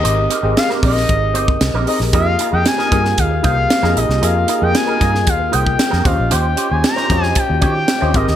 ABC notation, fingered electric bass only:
X:1
M:4/4
L:1/16
Q:1/4=115
K:Fm
V:1 name="Fingered electric bass" clef=bass
A,,,2 z A,,, z2 B,,,2 A,,,2 G,,,2 C,, B,,, z B,,, | F,,2 z F,, z2 G,,2 E,,2 C,,2 z F,, B,,, C,, | F,,2 z F,, z2 G,,2 E,,2 C,,2 z F,, E,, B,,, | E,,2 z E,, z2 F,,2 z E,, E,2 z E,, A,,, E,, |]